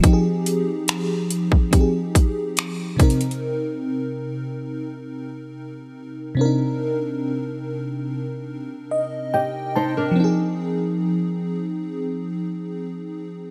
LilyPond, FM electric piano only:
\new Staff \with { instrumentName = "FM electric piano" } { \time 4/4 \key f \minor \tempo 4 = 71 << { r1 | r1 | r2 r8 ees''8 g''8 a''8 | r1 | } \\ { <f c' ees' g' aes'>2 <f c' ees' g' aes'>4. <c c' ees' bes'>8~ | <c c' ees' bes'>2.~ <c c' ees' bes'>8 <c c' d' ees' bes'>8~ | <c c' d' ees' bes'>2.~ <c c' d' ees' bes'>8 r8 | <f c' ees' aes'>1 | } >> }